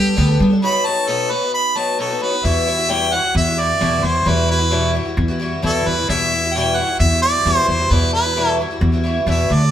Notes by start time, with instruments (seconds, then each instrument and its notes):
Already playing: upright bass G3, twelve-string acoustic guitar G3 B3 D4 A4, harmonica G4
0.16 upright bass D2, twelve-string acoustic guitar G3 B3 D4 A4
0.28 twelve-string acoustic guitar B3 D4 A4
0.39 twelve-string acoustic guitar G3 B3 D4 A4, upright bass G3
0.50 twelve-string acoustic guitar B3 D4 A4
0.62 twelve-string acoustic guitar B2 F#3 B3 D#4 F#4, harmonica B5
0.84 twelve-string acoustic guitar F#3 B3 D#4 F#4, harmonica A5
1.07 twelve-string acoustic guitar B2 F#3 B3 D#4 F#4, harmonica A4
1.30 twelve-string acoustic guitar F#3 B3 D#4 F#4, harmonica B4
1.41 twelve-string acoustic guitar B3 D#4 F#4
1.54 harmonica B5
1.75 twelve-string acoustic guitar F#3 B3 D#4 F#4, harmonica A5
1.99 twelve-string acoustic guitar B2 F#3 B3 D#4 F#4, harmonica A4
2.10 twelve-string acoustic guitar B3 D#4 F#4
2.20 twelve-string acoustic guitar F#3 B3 D#4 F#4, harmonica B4
2.31 twelve-string acoustic guitar B3 D#4 F#4
2.44 twelve-string acoustic guitar E2 B2 E3 G3 E4 F#4, upright bass E2, harmonica E5
2.66 twelve-string acoustic guitar E3 G3 E4 F#4
2.77 twelve-string acoustic guitar E3 G3 E4 F#4
2.88 twelve-string acoustic guitar E2 B2 E3 G3 E4 F#4, harmonica G5
3.12 twelve-string acoustic guitar E3 G3 E4 F#4, harmonica F#5
3.23 twelve-string acoustic guitar E3 G3 E4 F#4
3.35 upright bass E2, harmonica E5
3.46 twelve-string acoustic guitar E3 G3 E4 F#4
3.57 twelve-string acoustic guitar E3 G3 E4 F#4, harmonica D5
3.80 twelve-string acoustic guitar E2 B2 E3 G3 E4 F#4, upright bass E2
4.03 upright bass E2, twelve-string acoustic guitar E3 G3 E4 F#4, harmonica C5
4.14 twelve-string acoustic guitar E3 G3 E4 F#4
4.25 twelve-string acoustic guitar E2 B2 E3 G3 E4 F#4, upright bass E2, harmonica B4
4.47 twelve-string acoustic guitar E3 G3 E4 F#4, harmonica B4
4.58 twelve-string acoustic guitar E3 G3 E4 F#4
4.71 twelve-string acoustic guitar E2 B2 E3 G3 E4 F#4
4.93 twelve-string acoustic guitar E3 G3 E4 F#4
5.05 twelve-string acoustic guitar E3 G3 E4 F#4
5.17 upright bass E2
5.28 twelve-string acoustic guitar E3 G3 E4 F#4
5.40 twelve-string acoustic guitar E3 G3 E4 F#4
5.62 twelve-string acoustic guitar E2 B2 E3 G3 E4 F#4, upright bass E2, harmonica A4
5.85 upright bass E2, twelve-string acoustic guitar E3 G3 E4 F#4, harmonica B4
5.96 twelve-string acoustic guitar E3 G3 E4 F#4
6.08 twelve-string acoustic guitar E2 B2 E3 G3 E4 F#4, upright bass E2, harmonica E5
6.31 twelve-string acoustic guitar E3 G3 E4 F#4
6.43 twelve-string acoustic guitar E3 G3 E4 F#4
6.55 twelve-string acoustic guitar E2 B2 E3 G3 E4 F#4, harmonica G5
6.76 twelve-string acoustic guitar E3 G3 E4, harmonica F#5
6.80 twelve-string acoustic guitar F#4
6.89 twelve-string acoustic guitar E3 G3 E4 F#4
6.99 upright bass E2, harmonica E5
7.11 twelve-string acoustic guitar E3 G3 E4 F#4
7.22 twelve-string acoustic guitar E3 G3 E4 F#4, harmonica D5
7.45 upright bass E2, twelve-string acoustic guitar E2 B2 E3 G3 E4 F#4
7.57 harmonica C5
7.68 upright bass E2, twelve-string acoustic guitar E3 G3 E4 F#4, harmonica C5
7.79 twelve-string acoustic guitar E3 G3 E4 F#4
7.90 twelve-string acoustic guitar E2 B2 E3 G3 E4 F#4, upright bass E2, harmonica B4
8.14 twelve-string acoustic guitar E3 G3 E4 F#4, harmonica B4
8.25 twelve-string acoustic guitar E3 G3 E4 F#4
8.36 twelve-string acoustic guitar E2 B2 E3 G3 E4 F#4
8.59 twelve-string acoustic guitar E3 G3 E4 F#4
8.71 twelve-string acoustic guitar E3 G3 E4 F#4
8.81 upright bass E2
8.92 twelve-string acoustic guitar E3 G3 E4 F#4
9.04 twelve-string acoustic guitar E3 G3 E4 F#4
9.26 upright bass E2, twelve-string acoustic guitar E2 B2 E3 G3 E4 F#4
9.31 harmonica E5
9.49 upright bass D2, twelve-string acoustic guitar E3 A3 D4 F#4
9.53 harmonica D5
9.61 twelve-string acoustic guitar A3 D4 F#4